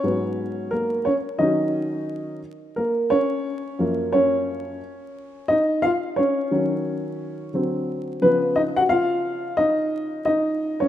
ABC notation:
X:1
M:4/4
L:1/16
Q:"Swing 16ths" 1/4=88
K:Gb
V:1 name="Upright piano"
[Dd]4 [B,B]2 [Dd]2 [Ee]6 z2 | [B,B]2 [Dd]6 [Dd]8 | [Ee]2 [Ff]2 [Dd]8 z4 | c2 [Ee] [Gg] [Ff]4 [Ee]4 [Ee]3 [Dd] |]
V:2 name="Upright piano" clef=bass
[A,,G,C]6 z2 [E,G,D]6 z2 | z6 [G,,F,B,]6 z4 | z6 [E,G,D]6 [=D,^F,=C]4 | [D,F,C]16 |]